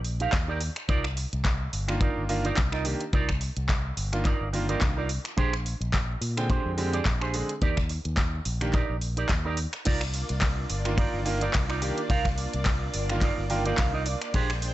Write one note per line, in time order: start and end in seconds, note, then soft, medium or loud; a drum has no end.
0.00 0.26 A#1 medium
0.05 open hi-hat loud
0.20 0.33 D#4 medium
0.20 0.33 G4 medium
0.20 0.33 A#4 medium
0.20 0.33 F5 loud
0.20 closed hi-hat medium
0.32 0.68 D#2 medium
0.32 kick loud
0.32 clap loud
0.32 closed hi-hat medium
0.48 0.60 D#4 medium
0.48 0.61 G4 medium
0.48 0.61 A#4 medium
0.48 0.61 D5 medium
0.61 open hi-hat loud
0.76 finger snap medium
0.76 muted clean electric guitar stroke soft
0.76 closed hi-hat medium
0.89 1.24 C2 loud
0.89 1.04 D#4 loud
0.89 1.04 F4 medium
0.89 1.05 A#4 loud
0.89 1.05 D5 loud
0.89 kick loud
0.89 closed hi-hat medium
1.04 finger snap medium
1.16 muted clean electric guitar stroke soft
1.16 open hi-hat loud
1.33 1.67 C2 loud
1.33 closed hi-hat medium
1.45 kick loud
1.45 clap loud
1.45 closed hi-hat soft
1.73 2.08 G1 medium
1.73 open hi-hat loud
1.88 2.25 D#3 medium
1.88 2.26 A#3 medium
1.88 2.26 D4 medium
1.88 2.26 F4 medium
1.88 finger snap medium
1.88 closed hi-hat medium
2.01 2.23 D#4 medium
2.01 2.23 F4 medium
2.01 2.23 A#4 medium
2.01 2.23 D5 medium
2.01 kick loud
2.01 closed hi-hat medium
2.17 2.51 G1 medium
2.29 2.45 D#3 medium
2.29 2.46 A#3 medium
2.29 2.46 D4 medium
2.29 2.46 F4 loud
2.29 open hi-hat loud
2.45 2.57 D#4 loud
2.45 2.57 F4 medium
2.45 2.57 A#4 medium
2.45 2.57 D5 loud
2.45 closed hi-hat medium
2.57 2.93 C2 medium
2.57 kick loud
2.57 clap loud
2.57 closed hi-hat medium
2.72 2.85 D#4 medium
2.72 2.85 F4 medium
2.72 2.85 A#4 medium
2.72 2.85 D#5 medium
2.72 finger snap medium
2.84 3.01 D#3 medium
2.84 3.01 A#3 medium
2.84 3.02 D4 medium
2.84 3.02 G4 medium
2.84 open hi-hat loud
3.00 muted clean electric guitar stroke soft
3.00 closed hi-hat medium
3.13 3.49 C2 loud
3.13 3.29 D#4 loud
3.13 3.29 F4 loud
3.13 3.29 A#4 loud
3.13 3.29 D5 loud
3.13 kick loud
3.13 closed hi-hat medium
3.29 finger snap medium
3.29 kick medium
3.41 muted clean electric guitar stroke soft
3.41 open hi-hat loud
3.57 3.91 C2 loud
3.57 closed hi-hat medium
3.69 kick loud
3.69 clap loud
3.69 closed hi-hat medium
3.97 4.33 G1 loud
3.97 open hi-hat loud
4.12 4.26 D#3 medium
4.12 4.26 A#3 medium
4.12 4.26 D4 medium
4.12 4.26 F4 medium
4.12 finger snap medium
4.12 closed hi-hat medium
4.25 4.47 D#4 medium
4.25 4.47 F4 medium
4.25 4.47 A#4 medium
4.25 4.48 D5 medium
4.25 kick loud
4.25 clap medium
4.25 closed hi-hat medium
4.41 4.75 G1 medium
4.53 4.65 D#3 medium
4.53 4.65 A#3 medium
4.53 4.65 D4 medium
4.53 4.66 F4 medium
4.53 open hi-hat loud
4.68 4.92 D#3 medium
4.68 4.92 A#3 medium
4.68 4.93 D4 medium
4.68 4.81 D#4 medium
4.68 4.81 F4 medium
4.68 4.93 F4 medium
4.68 4.81 A#4 medium
4.68 4.82 D5 medium
4.68 closed hi-hat medium
4.81 5.17 C2 medium
4.81 kick loud
4.81 clap loud
4.81 closed hi-hat medium
4.96 5.09 D#4 medium
4.96 5.09 F4 medium
4.96 5.09 A#4 medium
4.96 5.09 D5 medium
5.09 open hi-hat loud
5.24 finger snap medium
5.24 muted clean electric guitar stroke soft
5.24 closed hi-hat medium
5.37 5.73 A#1 loud
5.37 5.53 D4 loud
5.37 5.53 G4 loud
5.37 5.53 G#4 loud
5.37 5.53 C5 loud
5.37 kick loud
5.37 closed hi-hat medium
5.53 finger snap medium
5.65 muted clean electric guitar stroke soft
5.65 open hi-hat loud
5.81 6.15 A#1 loud
5.81 closed hi-hat medium
5.93 kick loud
5.93 clap loud
5.93 closed hi-hat medium
6.21 6.57 A#2 loud
6.21 open hi-hat loud
6.37 6.74 D3 medium
6.37 6.75 G#3 medium
6.37 6.75 C4 medium
6.37 6.75 G5 medium
6.37 finger snap medium
6.37 closed hi-hat medium
6.49 6.71 D4 medium
6.49 6.71 G4 medium
6.49 6.71 G#4 medium
6.49 6.72 C5 loud
6.49 kick loud
6.49 closed hi-hat medium
6.65 6.99 F2 medium
6.77 6.94 D3 medium
6.77 6.94 G#3 medium
6.77 6.94 C4 medium
6.77 6.94 G4 loud
6.77 open hi-hat loud
6.93 7.05 D4 medium
6.93 7.06 G4 medium
6.93 7.06 G#4 medium
6.93 7.06 D5 loud
6.93 closed hi-hat medium
7.05 7.41 A#1 medium
7.05 kick loud
7.05 clap loud
7.05 closed hi-hat medium
7.21 7.33 D4 medium
7.21 7.34 G4 medium
7.21 7.34 G#4 medium
7.21 7.34 C5 medium
7.21 finger snap medium
7.34 7.50 D3 medium
7.34 7.50 G#3 medium
7.34 7.51 C4 medium
7.34 7.51 G#4 medium
7.34 open hi-hat loud
7.49 muted clean electric guitar stroke soft
7.49 closed hi-hat medium
7.61 7.97 D#2 loud
7.61 7.77 D#4 loud
7.61 7.77 G4 loud
7.61 7.77 A#4 medium
7.61 7.78 D5 loud
7.61 kick loud
7.61 closed hi-hat medium
7.77 finger snap medium
7.77 kick medium
7.89 muted clean electric guitar stroke soft
7.89 open hi-hat loud
8.05 8.39 D#2 loud
8.05 closed hi-hat medium
8.17 kick loud
8.17 clap loud
8.17 closed hi-hat medium
8.45 8.81 A#1 medium
8.45 open hi-hat loud
8.61 8.75 D#3 medium
8.61 8.75 A#3 medium
8.61 8.75 D4 medium
8.61 8.75 G4 medium
8.61 finger snap medium
8.61 closed hi-hat medium
8.73 8.95 D#4 medium
8.73 8.96 G4 medium
8.73 8.96 A#4 medium
8.73 8.96 D5 loud
8.73 kick loud
8.73 clap medium
8.73 closed hi-hat medium
8.89 9.23 A#1 medium
9.01 open hi-hat loud
9.17 9.30 D#4 medium
9.17 9.30 G4 medium
9.17 9.30 A#4 medium
9.17 9.30 D5 medium
9.17 closed hi-hat medium
9.29 9.65 D#2 medium
9.29 kick loud
9.29 clap loud
9.29 closed hi-hat medium
9.45 9.58 D#4 medium
9.45 9.58 G4 medium
9.45 9.58 A#4 medium
9.45 9.58 D5 medium
9.57 open hi-hat loud
9.73 finger snap medium
9.73 muted clean electric guitar stroke soft
9.73 closed hi-hat medium
9.85 10.22 C2 loud
9.85 14.30 A#3 medium
9.85 14.30 D4 medium
9.85 10.01 D#4 loud
9.85 14.30 F4 medium
9.85 10.01 F4 loud
9.85 10.02 A#4 medium
9.85 14.30 D5 medium
9.85 10.02 D5 loud
9.85 kick loud
9.85 closed hi-hat medium
9.85 crash medium
9.85 ride medium
10.01 finger snap medium
10.14 muted clean electric guitar stroke soft
10.14 open hi-hat loud
10.29 10.64 C2 loud
10.29 closed hi-hat medium
10.41 kick loud
10.41 clap loud
10.41 closed hi-hat medium
10.41 ride medium
10.70 11.05 G1 loud
10.70 open hi-hat loud
10.85 11.23 D#3 medium
10.85 11.23 A#3 medium
10.85 11.23 D4 medium
10.85 11.23 F4 medium
10.85 finger snap medium
10.85 closed hi-hat medium
10.98 11.20 D#4 medium
10.98 11.20 F4 medium
10.98 11.20 A#4 medium
10.98 11.20 D5 loud
10.98 kick loud
10.98 closed hi-hat medium
10.98 ride medium
11.14 11.48 G1 medium
11.25 11.42 D#3 medium
11.25 11.42 A#3 medium
11.25 11.42 D4 medium
11.25 11.43 F4 loud
11.25 open hi-hat loud
11.41 11.54 D#4 medium
11.41 11.54 F4 medium
11.41 11.54 A#4 medium
11.41 11.54 D5 loud
11.41 closed hi-hat medium
11.53 11.90 C2 medium
11.53 kick loud
11.53 clap loud
11.53 closed hi-hat medium
11.53 ride medium
11.69 11.82 D#4 medium
11.69 11.82 F4 medium
11.69 11.82 A#4 medium
11.69 11.82 D5 medium
11.69 finger snap medium
11.81 11.98 D#3 medium
11.81 11.98 A#3 medium
11.81 11.98 D4 medium
11.81 11.99 G4 medium
11.81 open hi-hat loud
11.97 muted clean electric guitar stroke soft
11.97 closed hi-hat medium
12.09 12.45 C2 loud
12.09 12.25 D#4 loud
12.09 12.26 F4 loud
12.09 12.26 A#4 medium
12.09 12.26 F5 loud
12.09 kick loud
12.09 closed hi-hat medium
12.09 ride medium
12.25 finger snap medium
12.25 kick medium
12.38 muted clean electric guitar stroke soft
12.38 open hi-hat loud
12.53 12.88 C2 loud
12.53 closed hi-hat medium
12.65 kick loud
12.65 clap loud
12.65 closed hi-hat medium
12.65 ride medium
12.94 13.30 G1 loud
12.94 open hi-hat loud
13.10 13.23 D#3 medium
13.10 13.24 A#3 medium
13.10 13.24 D4 medium
13.10 13.24 F4 medium
13.10 finger snap medium
13.10 closed hi-hat medium
13.21 13.44 D#4 medium
13.21 13.44 F4 medium
13.21 13.44 A#4 medium
13.21 13.44 D5 loud
13.21 kick loud
13.21 clap medium
13.21 closed hi-hat medium
13.21 ride medium
13.38 13.72 G1 medium
13.50 13.62 D#3 medium
13.50 13.62 A#3 medium
13.50 13.62 D4 medium
13.50 13.62 F4 loud
13.50 13.66 G5 medium
13.50 open hi-hat loud
13.65 13.89 D#3 medium
13.65 13.90 A#3 medium
13.65 13.90 D4 medium
13.65 13.78 D#4 medium
13.65 13.78 F4 medium
13.65 13.90 F4 medium
13.65 13.78 A#4 medium
13.65 13.78 D5 loud
13.65 closed hi-hat medium
13.77 14.14 C2 medium
13.77 13.94 F5 medium
13.77 kick loud
13.77 clap loud
13.77 closed hi-hat medium
13.77 ride medium
13.93 14.06 D#4 medium
13.93 14.06 F4 medium
13.93 14.06 A#4 medium
13.93 14.06 D#5 medium
14.06 14.21 D5 medium
14.06 open hi-hat loud
14.21 finger snap medium
14.21 muted clean electric guitar stroke soft
14.21 closed hi-hat medium
14.33 14.70 A#1 loud
14.33 14.74 G#3 medium
14.33 14.74 D4 medium
14.33 14.50 D4 loud
14.33 14.50 G4 medium
14.33 14.50 G#4 loud
14.33 14.74 C5 medium
14.33 14.50 C5 loud
14.33 14.74 G5 medium
14.33 kick loud
14.33 closed hi-hat medium
14.33 ride medium
14.50 finger snap medium
14.62 muted clean electric guitar stroke soft
14.62 open hi-hat loud